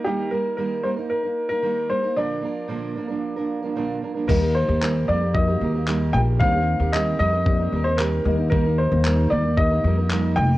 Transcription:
<<
  \new Staff \with { instrumentName = "Upright piano" } { \time 4/4 \key ees \major \tempo 4 = 113 g'8 bes'8 bes'8 c''8 bes'8. bes'8. c''8 | d''2. r4 | bes'8 c''4 d''8 ees''4. g''8 | f''4 ees''8 ees''4~ ees''16 c''16 bes'8. r16 |
bes'8 c''4 d''8 ees''4. g''8 | }
  \new Staff \with { instrumentName = "Felt piano" } { \time 4/4 \key ees \major r1 | r1 | <bes ees' g' ees''>4. r8 <bes ees' ges' g' bes'>4. r8 | <bes d' ees' g' c''>4. r8 <bes ees' g' d'' ees''>4. <bes ees' g' ees''>8~ |
<bes ees' g' ees''>4 r4 <bes ees' g' bes'>4. r8 | }
  \new Staff \with { instrumentName = "Steel-string acoustic guitar" } { \time 4/4 \key ees \major <ees g bes ees' bes'>8 <g bes ees' bes'>8 <ees g bes ees' bes'>8 <g bes ees' bes'>16 <bes ees' bes'>8 <bes ees' bes'>8 <bes ees' bes'>16 <ees g bes ees' bes'>8 <g bes ees' bes'>16 <bes ees' bes'>16 | <bes, d f bes d' bes'>8 <f bes d' bes'>8 <bes, d f bes d' bes'>8 <f bes d' bes'>16 <f bes d' bes'>8 <f bes d' bes'>8 <f bes d' bes'>16 <bes, d f bes d' bes'>8 <f bes d' bes'>16 <f bes d' bes'>16 | <ees g bes g' bes'>16 <bes g' bes'>8 <bes g' bes'>16 <ees g bes g' bes'>8 <g bes g' bes'>16 <bes g' bes'>8 <bes g' bes'>16 <g bes g' bes'>16 <bes g' bes'>16 <ees g bes g' bes'>8 <g bes g' bes'>8 | <ees g c' g' bes'>16 <c' g' bes'>8 <c' g' bes'>16 <ees g c' g' bes'>8 <g c' g' bes'>16 <c' g' bes'>8 <c' g' bes'>16 <g c' g' bes'>16 <c' g' bes'>16 <ees g c' g' bes'>8 <g bes ees' bes'>16 <bes ees' bes'>16 |
<ees g bes ees' bes'>16 <bes ees' bes'>8 <bes ees' bes'>16 <ees g bes ees' bes'>8 <g bes ees' bes'>16 <bes ees' bes'>8 <bes ees' bes'>16 <g bes ees' bes'>16 <bes ees' bes'>16 <ees g bes ees' bes'>8 <g bes ees' bes'>8 | }
  \new Staff \with { instrumentName = "Upright bass" } { \clef bass \time 4/4 \key ees \major r1 | r1 | ees,8. ees,8. f,4 ees,4 bes,,8 | ees,8. ees,8. f,4 ees,4 ees,8~ |
ees,8. ees,8. ees,4 f,4 f,,8 | }
  \new DrumStaff \with { instrumentName = "Drums" } \drummode { \time 4/4 r4 r4 r4 r4 | r4 r4 r4 r4 | <cymc bd>4 hc4 bd4 hc4 | bd4 hc4 bd4 hc4 |
bd4 hc4 bd4 hc4 | }
>>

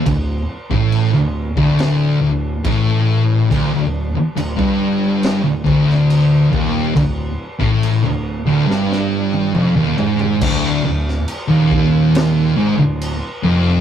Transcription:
<<
  \new Staff \with { instrumentName = "Distorted electric guitar" } { \clef bass \time 4/4 \key d \minor \tempo 4 = 70 d,8 r16 a,8 d,8 d,8. d,8 a,4 | d,16 d,8 r16 d,16 g,4 d,16 d,4 ees,8 | d,8 r16 a,8 d,8 d,16 g,4 f,16 ees,16 gis,8 | d,8 d,8 r16 ees,4~ ees,16 gis,16 d,8 r16 f,8 | }
  \new Staff \with { instrumentName = "Distorted electric guitar" } { \clef bass \time 4/4 \key d \minor d,8 r16 a,8 d,8 d,8. d,8 a,4 | d,16 d,8 r16 d,16 g,4 d,16 d,4 ees,8 | d,8 r16 a,8 d,8 d,16 g,4 f,16 ees,16 gis,8 | d,8 d,8 r16 ees,4~ ees,16 gis,16 d,8 r16 f,8 | }
  \new Staff \with { instrumentName = "Picked electric bass" } { \clef bass \time 4/4 \key d \minor d,,8 r16 a,,8 d,,8 d,,8. d,,8 a,,4 | d,,16 d,,8 r16 d,,16 g,,4 d,,16 d,,4 ees,,8 | d,,8 r16 a,,8 d,,8 d,,16 g,,4 f,,16 ees,,16 gis,,8 | d,,8 d,,8 r16 ees,,4~ ees,,16 gis,,16 d,,8 r16 f,,8 | }
  \new DrumStaff \with { instrumentName = "Drums" } \drummode { \time 4/4 <cymc bd>8. bd16 cymc8. bd16 <cymc sn>4 <cymc bd>4 | <cymc bd>4 cymc16 bd8. <cymc sn>8 bd16 sn16 cymc8 bd8 | <cymc bd>8. bd16 cymc4 sn16 sn8 tommh16 toml8 tomfh16 tomfh16 | <cymc bd>8. sn16 cymc8 bd8 <cymc sn>4 cymc4 | }
>>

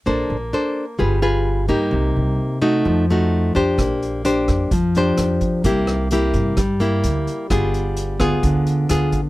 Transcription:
<<
  \new Staff \with { instrumentName = "Nylon-string guitar" } { \time 4/4 \key bes \major \tempo 4 = 129 << { <d' a' c''>8 r8 <d' a' c''>8 r8 <f' aes' b'>8 <f' aes' b'>4 <bes ees' g'>8~ | <bes ees' g'>4. <a ees' ges'>4 <a ees' ges'>4 <d' g' c''>8~ | <d' g' c''>4 <d' g' c''>4 r8 <d' g' c''>4. | <bes e' g'>4 <bes e' g'>4 r8 <bes e' g'>4. |
<b f' aes'>4. <b f' aes'>4. <b f' aes'>8 r8 | } \\ { bes2 g2 | c2 f2 | bes2 f2 | c2 g2 |
g2 d2 | } >> }
  \new Staff \with { instrumentName = "Upright bass" } { \clef bass \time 4/4 \key bes \major bes,,8 bes,,8 r4 g,,4. g,8 | c,8 c,8 r4 f,4. f,8 | bes,,4. f,8 f,4 f,8 r8 | c,4. g,8 g,4 d,8 r8 |
g,,4. d,8 d,4 d,8 r8 | }
  \new DrumStaff \with { instrumentName = "Drums" } \drummode { \time 4/4 r4 r4 r4 r4 | r4 r4 r4 r4 | <hh bd ss>8 hh8 hh8 <hh bd ss>8 <hh bd>8 hh8 <hh ss>8 <hh bd>8 | <hh bd>8 <hh ss>8 hh8 <hh bd>8 <hh bd ss>8 hh8 hh8 hh8 |
<hh bd ss>8 hh8 hh8 <hh bd ss>8 <hh bd>8 hh8 <hh ss>8 <hh bd>8 | }
>>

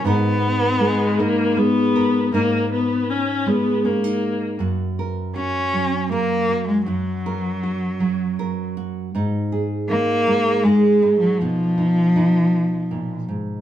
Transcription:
<<
  \new Staff \with { instrumentName = "Nylon-string guitar" } { \time 3/4 \key fis \major \tempo 4 = 79 << { <b dis' ais'>4. dis'4 ais'8 | <dis' ais'>2 cis'16 dis'8. | fis'8 ais'8 fis'4 ais'8 fis'8 | fis'8 ais'8 fis'4 ais'8 fis'8 |
dis'8 gis'8 dis'4 gis'8 dis'8 | dis'8 dis'8 dis'2 | } \\ { gis,4 gis4 gis4 | gis,4. gis4. | fis,4. fis4. | fis,4. fis4. |
gis,4. gis4. | b,2 ais,8 gis,8 | } >> }
  \new Staff \with { instrumentName = "Viola" } { \time 3/4 \key fis \major r4 gis8 ais8 b4 | ais8 b8 cis'8 b8 ais4 | r2. | r2. |
r2. | r2. | }
  \new Staff \with { instrumentName = "Cello" } { \clef bass \time 3/4 \key fis \major b2 r4 | r2. | r4 cis'4 ais8. gis16 | fis2~ fis8 r8 |
r4 ais4 gis8. fis16 | eis2~ eis8 r8 | }
>>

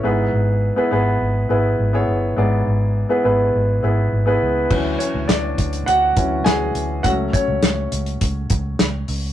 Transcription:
<<
  \new Staff \with { instrumentName = "Grand piano" } { \time 4/4 \key e \mixolydian \tempo 4 = 103 <b e' gis' b'>4~ <b e' gis' b'>16 <b e' gis' b'>16 <b e' gis' b'>4 <b e' gis' b'>8. <b e' gis' cis''>8. | <b e' gis' d''>4~ <b e' gis' d''>16 <b e' gis' b'>16 <b e' gis' b'>4 <b e' gis' b'>8. <b e' gis' b'>8. | r8 <cis' cis''>8 <d' d''>4 <fis' fis''>4 <gis' gis''>4 | <fis' fis''>8 <cis' cis''>2 r4. | }
  \new Staff \with { instrumentName = "Grand piano" } { \clef bass \time 4/4 \key e \mixolydian gis,4. r2 r8 | gis,4. r2 r8 | <e fis cis'>4. r4 <e fis cis'>8 r4 | <fis a cis'>8 r2. r8 | }
  \new Staff \with { instrumentName = "Fingered electric bass" } { \clef bass \time 4/4 \key e \mixolydian gis,,8 gis,,8. r16 gis,,8 gis,,8 gis,,8 gis,,8 g,,8 | gis,,8 gis,,8. r16 gis,,8 gis,,8 gis,,8 gis,,8 cis,8 | d,8 r16 d,16 d,8 d,8 d,8 d,8 d,8 d,8 | cis,8 r16 cis,16 cis,8 cis,8 cis,8 cis,8 cis,8 cis,8 | }
  \new DrumStaff \with { instrumentName = "Drums" } \drummode { \time 4/4 r4 r4 r4 r4 | r4 r4 r4 r4 | <cymc bd>8 hh8 <hh sn>8 <hh bd>16 hh16 hh8 <hh bd>8 <hh sn>8 hh8 | <hh bd>8 <hh bd>8 <hh sn>8 hh16 hh16 <hh bd>8 <hh bd>8 <hh sn>8 hho8 | }
>>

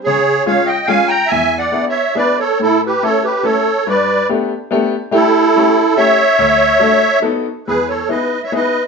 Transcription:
<<
  \new Staff \with { instrumentName = "Accordion" } { \time 3/4 \key a \mixolydian \tempo 4 = 142 <gis' cis''>4 <cis'' eis''>8 <ees'' g''>8 <eis'' gis''>8 <g'' bes''>8 | \tuplet 3/2 { <e'' gis''>4 <d'' fis''>8~ <d'' fis''>8 <cis'' e''>4 } <b' d''>8 <a' cis''>8 | <e' a'>8 <g' b'>8 <a' cis''>8 <g' b'>8 <a' cis''>4 | <b' d''>4 r2 |
<e' a'>2 <cis'' e''>4~ | <cis'' e''>2 r4 | \key e \major <gis' b'>8 <a' cis''>8 <b' dis''>8. <cis'' e''>16 <b' dis''>8. r16 | }
  \new Staff \with { instrumentName = "Upright piano" } { \time 3/4 \key a \mixolydian cis4 <gis cis' eis' gis'>8 r8 <gis cis' eis' gis'>8 r8 | e,4 <b d' e' gis'>8 r8 <b d' e' gis'>8 r8 | a,4 <a cis' e' a'>8 r8 <a cis' e' a'>8 r8 | g,4 <a b d' g'>8 r8 <a b d' g'>8 r8 |
<a d' e' g'>4 <a cis' e' g'>8 r8 <a cis' e' g'>8 r8 | d,4 <a d' fis' a'>8 r8 <b dis' fis' a'>8 r8 | \key e \major e,4 <b dis' e' gis'>8 r8 <b dis' e' gis'>8 r8 | }
>>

